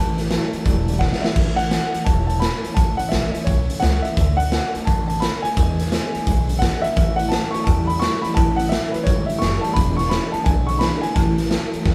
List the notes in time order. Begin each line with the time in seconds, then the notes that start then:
Already playing: A1 A2 E3 A3 C#4 E4 A5
0.17 A2 E3 A3 C#4 E4, snare, closed hi-hat
0.30 A2 E3 F#3 A3 C#4 E4, snare, closed hi-hat
0.53 A2 F#3 A3 C#4 E4, muted upright bass stroke, closed hi-hat
0.65 E1 A2 E3 G3 A3 C#4 E4, kick, closed hi-hat
0.88 A2 G3 A3 C#4 E4, closed hi-hat
0.99 A2 E3 G3 A3 C#4 E4 F#5, kick, snare
1.13 snare
1.21 A2 G3 C#4 E4 E5, muted upright bass stroke, snare
1.25 A3
1.36 A1 A2 E3 A3 C#4 E4, kick, crash
1.56 A3 C#4 E4 F#5, closed hi-hat
1.71 A2 E3 A3 C#4 E4, snare, closed hi-hat
1.93 A3 C#4 E4, muted upright bass stroke, closed hi-hat
2.04 E1 E3 A3 C#4 E4 A5, kick, closed hi-hat
2.27 A3 C#4 E4 A5, closed hi-hat
2.40 A2 E3 A3 C#4 E4 B5, snare, closed hi-hat
2.63 A3 C#4 E4, muted upright bass stroke, closed hi-hat
2.74 A1 A2 E3 A3 C#4 E4 A5, kick, closed hi-hat
2.97 A3 C#4 E4 F#5, muted upright bass stroke, closed hi-hat
3.09 A1 A2 E3 A3 C#4 E4 E5, snare, closed hi-hat
3.32 A3 C#4 E4 E5, muted upright bass stroke, closed hi-hat
3.44 B1 E3 A3 C#4 E4 C#5, kick, closed hi-hat
3.68 A3 C#4 E4, muted upright bass stroke, closed hi-hat
3.80 C#2 A2 E3 A3 C#4 E4 F#5, snare, closed hi-hat
4.02 A3 C#4 E4 E5, muted upright bass stroke, closed hi-hat
4.17 D2 D3 A3 D4 F#4, kick, closed hi-hat
4.37 D4 F#4 F#5, closed hi-hat
4.42 A3
4.52 D3 A3 D4 F#4, snare, closed hi-hat
4.74 A3 D4 F#4, muted upright bass stroke, closed hi-hat
4.85 A1 D3 A3 D4 F#4 A5, kick, closed hi-hat
5.07 D4 F#4 A5, closed hi-hat
5.12 A3
5.20 D3 A3 D4 F#4 B5, snare, closed hi-hat
5.42 A3 D4 F#4 G#5, muted upright bass stroke, closed hi-hat
5.56 E2 B2 E3 G#3 D4 E4, kick, closed hi-hat
5.78 E3 G#3 D4 E4, snare, closed hi-hat
5.91 E2 B2 E3 G#3 D4 E4, snare, closed hi-hat
6.14 E3 G#3 D4 E4, muted upright bass stroke, closed hi-hat
6.26 B1 E3 G#3 D4 E4, kick, closed hi-hat
6.49 E3 G#3 D4 E4, closed hi-hat
6.59 E2 B2 E3 G#3 D4 F#5, kick, snare, closed hi-hat
6.63 E4
6.82 G#3 D4 E4 E5, muted upright bass stroke, closed hi-hat
6.86 E3
6.97 A1 A2 E3 A3 C#4 E4, kick, closed hi-hat
7.16 A2 E3 C#4 E4 F#5, closed hi-hat
7.21 A3
7.29 A2 E3 A3 A5, snare, closed hi-hat
7.33 F#3 C#4 E4
7.51 A2 E4 C#6, muted upright bass stroke, closed hi-hat
7.55 F#3 A3 C#4
7.64 E2 A2 E3 G3 A3 C#4 A5, kick, closed hi-hat
7.68 E4
7.87 A2 G3 C#4 E4 B5, closed hi-hat
7.91 A3
7.99 A2 E3 G3 A3 C#4 E4 C#6, snare, closed hi-hat
8.22 A2 G3 C#4 E4 B5, muted upright bass stroke, closed hi-hat
8.26 A3
8.34 A1 A2 E3 A3 C#4 E4 A5, kick, closed hi-hat
8.56 A2 E3 C#4 E4 F#5, closed hi-hat
8.61 A3
8.69 A2 E3 F#3 A3 C#4 E4 E5, snare, closed hi-hat
8.91 A2 F#3 C#4 E4 B4, muted upright bass stroke, closed hi-hat
8.96 A3
9.03 G#1 A2 E3 G3 A3 C#5, kick, closed hi-hat
9.08 C#4 E4
9.26 A2 G3 C#4 E4 E5, muted upright bass stroke, closed hi-hat
9.31 A3
9.39 F#1 A2 E3 G3 A3 C#4 E4 C#6, snare, closed hi-hat
9.61 A2 G3 C#4 E4 A5, muted upright bass stroke, closed hi-hat
9.66 A3
9.73 E1 E2 B2 E3 G#3 D4 E4 B5, kick, closed hi-hat
9.97 E2 B2 E3 G#3 D4 E4 C#6, snare, closed hi-hat
10.09 E2 B2 C#3 E3 G#3 D4 E4 B5, snare, closed hi-hat
10.32 E2 C#3 E3 G#3 D4 E4 A5, muted upright bass stroke, closed hi-hat
10.44 B1 E2 D3 E3 G#3 D4 E4 G#5, kick, closed hi-hat
10.67 E2 D3 E3 G#3 D4 E4 C#6, closed hi-hat
10.79 E2 B2 D3 E3 G#3 D4 E4 B5, snare, closed hi-hat
11.01 E2 D3 G#3 D4 E4 G#5, muted upright bass stroke, closed hi-hat
11.05 E3
11.14 A1 A2 E3 A3 C#4 E4 A5, kick, closed hi-hat
11.38 A2 E3 A3 C#4 E4, snare, closed hi-hat
11.50 A2 E3 F#3 A3 C#4 E4, snare, closed hi-hat
11.72 A2 F#3 A3 C#4 E4, muted upright bass stroke, closed hi-hat
11.85 E2 A2 E3 G3 A3 C#4 E4, kick, snare